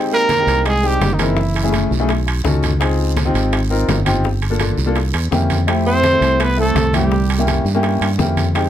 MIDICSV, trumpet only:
0, 0, Header, 1, 2, 480
1, 0, Start_track
1, 0, Tempo, 358637
1, 1842, Time_signature, 4, 2, 24, 8
1, 11635, End_track
2, 0, Start_track
2, 0, Title_t, "Trumpet"
2, 0, Program_c, 0, 56
2, 186, Note_on_c, 0, 70, 109
2, 845, Note_off_c, 0, 70, 0
2, 918, Note_on_c, 0, 68, 99
2, 1166, Note_on_c, 0, 67, 93
2, 1186, Note_off_c, 0, 68, 0
2, 1522, Note_on_c, 0, 63, 55
2, 1542, Note_off_c, 0, 67, 0
2, 1646, Note_on_c, 0, 64, 79
2, 1666, Note_off_c, 0, 63, 0
2, 2345, Note_off_c, 0, 64, 0
2, 7868, Note_on_c, 0, 72, 110
2, 8605, Note_on_c, 0, 71, 98
2, 8625, Note_off_c, 0, 72, 0
2, 8824, Note_off_c, 0, 71, 0
2, 8850, Note_on_c, 0, 69, 93
2, 9274, Note_off_c, 0, 69, 0
2, 9328, Note_on_c, 0, 67, 81
2, 9976, Note_off_c, 0, 67, 0
2, 11635, End_track
0, 0, End_of_file